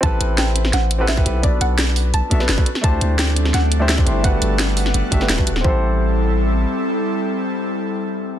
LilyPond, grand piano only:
\new Staff \with { instrumentName = "Grand piano" } { \time 4/4 \key a \dorian \tempo 4 = 171 <c' e' g' a' b'>2~ <c' e' g' a' b'>8. <c' e' g' a' b'>16 r16 <c' e' g' a' b'>16 <c' e' g' a' b'>8 | <b d' fis' a' b'>2~ <b d' fis' a' b'>8 <b d' fis' a' e''>16 <b d' fis' a' b'>8 <b d' fis' a' b'>16 r8 | <a d' e' g' c''>2~ <a d' e' g' c''>8. <a d' e' g' c''>16 r16 <a d' e' g' c''>16 <a d' e' g' c''>8 | <a d' fis' g' b'>2~ <a d' fis' g' b'>8 <a d' fis' g' e''>16 <a d' fis' g' b'>8 <a d' fis' g' b'>16 r8 |
<c' e' g' a' c''>1~ | <c' e' g' a' c''>1 | }